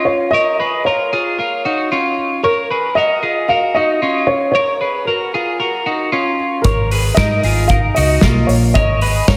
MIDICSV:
0, 0, Header, 1, 5, 480
1, 0, Start_track
1, 0, Tempo, 526778
1, 296, Time_signature, 4, 2, 24, 8
1, 8537, End_track
2, 0, Start_track
2, 0, Title_t, "Upright piano"
2, 0, Program_c, 0, 0
2, 46, Note_on_c, 0, 73, 81
2, 274, Note_off_c, 0, 73, 0
2, 279, Note_on_c, 0, 75, 94
2, 734, Note_off_c, 0, 75, 0
2, 774, Note_on_c, 0, 73, 69
2, 1939, Note_off_c, 0, 73, 0
2, 2217, Note_on_c, 0, 70, 88
2, 2689, Note_on_c, 0, 75, 91
2, 2712, Note_off_c, 0, 70, 0
2, 3139, Note_off_c, 0, 75, 0
2, 3176, Note_on_c, 0, 77, 94
2, 3413, Note_on_c, 0, 75, 91
2, 3424, Note_off_c, 0, 77, 0
2, 3861, Note_off_c, 0, 75, 0
2, 3889, Note_on_c, 0, 73, 87
2, 4101, Note_off_c, 0, 73, 0
2, 4115, Note_on_c, 0, 73, 81
2, 4605, Note_on_c, 0, 70, 69
2, 4620, Note_off_c, 0, 73, 0
2, 5774, Note_off_c, 0, 70, 0
2, 6030, Note_on_c, 0, 70, 79
2, 6510, Note_on_c, 0, 75, 86
2, 6537, Note_off_c, 0, 70, 0
2, 6994, Note_on_c, 0, 77, 90
2, 7017, Note_off_c, 0, 75, 0
2, 7050, Note_off_c, 0, 77, 0
2, 7240, Note_on_c, 0, 75, 87
2, 7716, Note_on_c, 0, 73, 78
2, 7742, Note_off_c, 0, 75, 0
2, 7772, Note_off_c, 0, 73, 0
2, 7964, Note_on_c, 0, 75, 92
2, 8455, Note_on_c, 0, 73, 75
2, 8463, Note_off_c, 0, 75, 0
2, 8537, Note_off_c, 0, 73, 0
2, 8537, End_track
3, 0, Start_track
3, 0, Title_t, "Clean electric guitar"
3, 0, Program_c, 1, 27
3, 0, Note_on_c, 1, 61, 51
3, 0, Note_on_c, 1, 65, 79
3, 273, Note_off_c, 1, 65, 0
3, 278, Note_off_c, 1, 61, 0
3, 304, Note_on_c, 1, 73, 87
3, 312, Note_on_c, 1, 70, 66
3, 540, Note_off_c, 1, 73, 0
3, 544, Note_off_c, 1, 70, 0
3, 544, Note_on_c, 1, 71, 78
3, 555, Note_on_c, 1, 68, 56
3, 781, Note_off_c, 1, 71, 0
3, 786, Note_off_c, 1, 68, 0
3, 788, Note_on_c, 1, 70, 84
3, 796, Note_on_c, 1, 65, 55
3, 1022, Note_off_c, 1, 70, 0
3, 1025, Note_off_c, 1, 65, 0
3, 1028, Note_on_c, 1, 68, 77
3, 1036, Note_on_c, 1, 65, 58
3, 1262, Note_off_c, 1, 65, 0
3, 1263, Note_off_c, 1, 68, 0
3, 1264, Note_on_c, 1, 70, 59
3, 1273, Note_on_c, 1, 65, 49
3, 1500, Note_off_c, 1, 70, 0
3, 1502, Note_off_c, 1, 65, 0
3, 1505, Note_on_c, 1, 66, 65
3, 1513, Note_on_c, 1, 63, 55
3, 1741, Note_off_c, 1, 66, 0
3, 1745, Note_off_c, 1, 63, 0
3, 1747, Note_on_c, 1, 65, 74
3, 1753, Note_on_c, 1, 61, 54
3, 2193, Note_off_c, 1, 65, 0
3, 2197, Note_off_c, 1, 61, 0
3, 2224, Note_on_c, 1, 73, 90
3, 2230, Note_on_c, 1, 70, 69
3, 2461, Note_off_c, 1, 73, 0
3, 2463, Note_off_c, 1, 70, 0
3, 2466, Note_on_c, 1, 71, 75
3, 2472, Note_on_c, 1, 68, 59
3, 2701, Note_off_c, 1, 71, 0
3, 2704, Note_off_c, 1, 68, 0
3, 2704, Note_on_c, 1, 70, 77
3, 2711, Note_on_c, 1, 66, 63
3, 2937, Note_off_c, 1, 66, 0
3, 2941, Note_off_c, 1, 70, 0
3, 2941, Note_on_c, 1, 68, 76
3, 2948, Note_on_c, 1, 65, 54
3, 3179, Note_off_c, 1, 68, 0
3, 3182, Note_off_c, 1, 65, 0
3, 3184, Note_on_c, 1, 70, 72
3, 3190, Note_on_c, 1, 66, 52
3, 3414, Note_off_c, 1, 66, 0
3, 3420, Note_off_c, 1, 70, 0
3, 3425, Note_on_c, 1, 66, 67
3, 3433, Note_on_c, 1, 63, 59
3, 3660, Note_off_c, 1, 66, 0
3, 3664, Note_on_c, 1, 65, 71
3, 3665, Note_off_c, 1, 63, 0
3, 3672, Note_on_c, 1, 61, 58
3, 4112, Note_off_c, 1, 65, 0
3, 4116, Note_off_c, 1, 61, 0
3, 4145, Note_on_c, 1, 73, 94
3, 4150, Note_on_c, 1, 70, 74
3, 4377, Note_off_c, 1, 73, 0
3, 4381, Note_on_c, 1, 71, 74
3, 4383, Note_off_c, 1, 70, 0
3, 4387, Note_on_c, 1, 68, 57
3, 4619, Note_off_c, 1, 71, 0
3, 4622, Note_off_c, 1, 68, 0
3, 4624, Note_on_c, 1, 70, 69
3, 4630, Note_on_c, 1, 66, 54
3, 4860, Note_off_c, 1, 70, 0
3, 4863, Note_off_c, 1, 66, 0
3, 4868, Note_on_c, 1, 68, 73
3, 4875, Note_on_c, 1, 65, 52
3, 5100, Note_on_c, 1, 70, 68
3, 5102, Note_off_c, 1, 68, 0
3, 5105, Note_off_c, 1, 65, 0
3, 5108, Note_on_c, 1, 66, 48
3, 5330, Note_off_c, 1, 66, 0
3, 5338, Note_off_c, 1, 70, 0
3, 5341, Note_on_c, 1, 66, 63
3, 5348, Note_on_c, 1, 63, 47
3, 5575, Note_off_c, 1, 66, 0
3, 5579, Note_on_c, 1, 65, 76
3, 5582, Note_off_c, 1, 63, 0
3, 5586, Note_on_c, 1, 61, 57
3, 6028, Note_off_c, 1, 65, 0
3, 6033, Note_off_c, 1, 61, 0
3, 6059, Note_on_c, 1, 73, 83
3, 6066, Note_on_c, 1, 70, 68
3, 6296, Note_off_c, 1, 73, 0
3, 6300, Note_on_c, 1, 71, 73
3, 6301, Note_off_c, 1, 70, 0
3, 6309, Note_on_c, 1, 68, 55
3, 6537, Note_off_c, 1, 68, 0
3, 6538, Note_off_c, 1, 71, 0
3, 6541, Note_on_c, 1, 70, 79
3, 6548, Note_on_c, 1, 63, 61
3, 6778, Note_off_c, 1, 70, 0
3, 6782, Note_off_c, 1, 63, 0
3, 6783, Note_on_c, 1, 68, 73
3, 6793, Note_on_c, 1, 65, 58
3, 7019, Note_off_c, 1, 68, 0
3, 7023, Note_on_c, 1, 70, 64
3, 7024, Note_off_c, 1, 65, 0
3, 7030, Note_on_c, 1, 63, 43
3, 7257, Note_off_c, 1, 63, 0
3, 7257, Note_off_c, 1, 70, 0
3, 7261, Note_on_c, 1, 66, 70
3, 7267, Note_on_c, 1, 63, 57
3, 7497, Note_off_c, 1, 63, 0
3, 7498, Note_off_c, 1, 66, 0
3, 7500, Note_on_c, 1, 65, 71
3, 7508, Note_on_c, 1, 58, 57
3, 7949, Note_off_c, 1, 65, 0
3, 7953, Note_off_c, 1, 58, 0
3, 7979, Note_on_c, 1, 73, 93
3, 7986, Note_on_c, 1, 70, 69
3, 8216, Note_off_c, 1, 73, 0
3, 8220, Note_off_c, 1, 70, 0
3, 8220, Note_on_c, 1, 71, 73
3, 8227, Note_on_c, 1, 68, 57
3, 8453, Note_off_c, 1, 71, 0
3, 8457, Note_on_c, 1, 70, 84
3, 8461, Note_off_c, 1, 68, 0
3, 8466, Note_on_c, 1, 63, 60
3, 8537, Note_off_c, 1, 63, 0
3, 8537, Note_off_c, 1, 70, 0
3, 8537, End_track
4, 0, Start_track
4, 0, Title_t, "Fingered electric bass"
4, 0, Program_c, 2, 33
4, 6057, Note_on_c, 2, 32, 102
4, 6465, Note_off_c, 2, 32, 0
4, 6539, Note_on_c, 2, 44, 100
4, 6741, Note_off_c, 2, 44, 0
4, 6775, Note_on_c, 2, 32, 86
4, 7183, Note_off_c, 2, 32, 0
4, 7267, Note_on_c, 2, 37, 86
4, 7466, Note_off_c, 2, 37, 0
4, 7492, Note_on_c, 2, 35, 93
4, 7697, Note_off_c, 2, 35, 0
4, 7730, Note_on_c, 2, 34, 87
4, 7936, Note_off_c, 2, 34, 0
4, 7976, Note_on_c, 2, 32, 92
4, 8383, Note_off_c, 2, 32, 0
4, 8459, Note_on_c, 2, 44, 94
4, 8537, Note_off_c, 2, 44, 0
4, 8537, End_track
5, 0, Start_track
5, 0, Title_t, "Drums"
5, 6053, Note_on_c, 9, 42, 60
5, 6055, Note_on_c, 9, 36, 108
5, 6144, Note_off_c, 9, 42, 0
5, 6147, Note_off_c, 9, 36, 0
5, 6300, Note_on_c, 9, 46, 77
5, 6391, Note_off_c, 9, 46, 0
5, 6533, Note_on_c, 9, 42, 68
5, 6535, Note_on_c, 9, 36, 107
5, 6535, Note_on_c, 9, 38, 108
5, 6624, Note_off_c, 9, 42, 0
5, 6626, Note_off_c, 9, 36, 0
5, 6626, Note_off_c, 9, 38, 0
5, 6773, Note_on_c, 9, 46, 74
5, 6865, Note_off_c, 9, 46, 0
5, 7006, Note_on_c, 9, 42, 65
5, 7015, Note_on_c, 9, 36, 90
5, 7097, Note_off_c, 9, 42, 0
5, 7106, Note_off_c, 9, 36, 0
5, 7253, Note_on_c, 9, 46, 66
5, 7344, Note_off_c, 9, 46, 0
5, 7484, Note_on_c, 9, 38, 93
5, 7488, Note_on_c, 9, 42, 65
5, 7496, Note_on_c, 9, 36, 91
5, 7575, Note_off_c, 9, 38, 0
5, 7580, Note_off_c, 9, 42, 0
5, 7587, Note_off_c, 9, 36, 0
5, 7736, Note_on_c, 9, 46, 62
5, 7827, Note_off_c, 9, 46, 0
5, 7975, Note_on_c, 9, 42, 55
5, 7976, Note_on_c, 9, 36, 89
5, 8066, Note_off_c, 9, 42, 0
5, 8067, Note_off_c, 9, 36, 0
5, 8212, Note_on_c, 9, 46, 75
5, 8304, Note_off_c, 9, 46, 0
5, 8454, Note_on_c, 9, 42, 70
5, 8456, Note_on_c, 9, 38, 98
5, 8457, Note_on_c, 9, 36, 114
5, 8537, Note_off_c, 9, 36, 0
5, 8537, Note_off_c, 9, 38, 0
5, 8537, Note_off_c, 9, 42, 0
5, 8537, End_track
0, 0, End_of_file